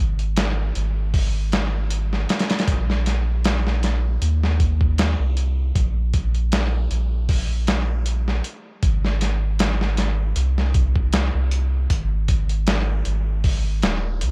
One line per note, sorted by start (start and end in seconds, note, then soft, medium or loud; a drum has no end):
0.00 0.72 G#1 medium
0.19 closed hi-hat soft
0.36 snare loud
0.36 closed hi-hat medium
0.75 2.26 G#1 medium
0.75 closed hi-hat medium
1.14 kick loud
1.14 open hi-hat medium
1.52 snare loud
1.52 closed hi-hat medium
1.90 closed hi-hat medium
2.13 snare soft
2.29 snare medium
2.29 closed hi-hat medium
2.39 snare medium
2.39 closed hi-hat medium
2.50 snare medium
2.50 closed hi-hat medium
2.59 snare medium
2.59 closed hi-hat medium
2.68 4.18 A#1 loud
2.68 kick loud
2.68 closed hi-hat medium
2.90 snare soft
3.06 snare soft
3.06 closed hi-hat medium
3.44 snare loud
3.44 closed hi-hat medium
3.67 snare soft
3.83 snare medium
3.83 closed hi-hat medium
4.22 5.16 D#2 loud
4.22 closed hi-hat medium
4.43 snare soft
4.60 kick medium
4.60 closed hi-hat medium
4.81 kick medium
4.98 snare loud
4.98 closed hi-hat medium
5.20 5.72 C2 medium
5.37 closed hi-hat medium
5.75 6.88 A#1 loud
5.75 kick loud
5.75 closed hi-hat medium
6.14 kick medium
6.14 closed hi-hat medium
6.35 closed hi-hat soft
6.52 snare loud
6.52 closed hi-hat medium
6.91 8.41 A#1 medium
6.91 closed hi-hat medium
7.29 kick loud
7.29 open hi-hat medium
7.67 snare loud
7.67 closed hi-hat medium
8.06 closed hi-hat medium
8.28 snare soft
8.44 closed hi-hat medium
8.83 10.33 G#1 loud
8.83 kick loud
8.83 closed hi-hat medium
9.05 snare soft
9.21 snare soft
9.21 closed hi-hat medium
9.59 snare loud
9.59 closed hi-hat medium
9.81 snare soft
9.97 snare medium
9.97 closed hi-hat medium
10.36 11.30 C2 loud
10.36 closed hi-hat medium
10.58 snare soft
10.74 kick medium
10.74 closed hi-hat medium
10.96 kick medium
11.13 snare loud
11.13 closed hi-hat medium
11.35 11.87 C2 medium
11.51 closed hi-hat medium
11.90 13.03 G#1 loud
11.90 kick loud
11.90 closed hi-hat medium
12.28 kick medium
12.28 closed hi-hat medium
12.49 closed hi-hat soft
12.67 snare loud
12.67 closed hi-hat medium
13.05 13.83 G#1 medium
13.05 closed hi-hat medium
13.44 kick loud
13.44 open hi-hat medium
13.82 14.24 D#1 loud
13.82 snare loud
13.82 closed hi-hat medium
14.21 14.31 C2 loud
14.21 closed hi-hat medium